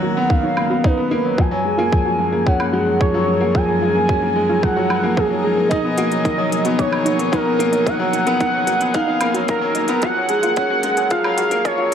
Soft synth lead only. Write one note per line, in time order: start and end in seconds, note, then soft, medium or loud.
0.00 0.33 F#5 loud
0.31 0.87 F5 loud
0.85 1.40 B4 loud
1.39 2.48 G#5 loud
2.46 3.00 F#5 loud
3.01 3.56 C#5 medium
3.54 4.64 G#5 loud
4.62 5.18 F#5 loud
5.17 5.69 G#4 medium
5.69 6.80 D#5 loud
6.78 7.34 C#5 loud
7.33 7.88 A#4 medium
7.87 8.96 F#5 loud
8.95 9.49 F5 loud
9.49 10.04 A#4 medium
10.03 11.11 F#5 loud
11.10 11.66 F5 loud
11.65 11.94 C#5 medium